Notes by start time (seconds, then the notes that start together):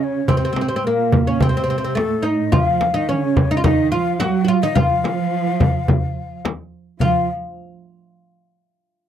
Already playing: C#3 C#4
0.04 C#5
0.28 C3 C4 C5, darbuka dum, frame drum
0.37 C4
0.45 C4
0.53 C4, darbuka tek, frame drum
0.61 C4
0.68 C4
0.76 C4 C5
0.85 A#2 A#3 A#4
1.12 darbuka dum, frame drum
1.27 C#4 C#5
1.41 C3 C4 C5, darbuka dum, frame drum
1.49 C4
1.57 C4
1.64 C4
1.70 C4
1.78 C4
1.84 C4
1.95 A2 A3 A4, darbuka tek, frame drum
2.23 D#4 D#5
2.52 F3 F4 F5, frame drum, darbuka dum
2.81 darbuka tek, frame drum
2.92 F3 D#4 D#5
2.97 D#3
3.09 C#3 C#4 C#5
3.36 frame drum, darbuka dum
3.51 D#4 D#5
3.57 F4
3.64 D#3 D#4 D#5, frame drum, darbuka dum
3.92 F3 F4 F5
4.20 F#3 F#4 F#5, darbuka tek, frame drum
4.45 F4 F#4
4.63 D#3 D#4 D#5
4.75 F3 F4 F5, frame drum, darbuka dum
5.04 darbuka tek, frame drum
5.19 darbuka ka
5.47 darbuka ka
5.60 frame drum, darbuka dum
5.88 darbuka dum, frame drum
6.45 darbuka tek, frame drum
7.00 F3 F4 F5, frame drum, darbuka dum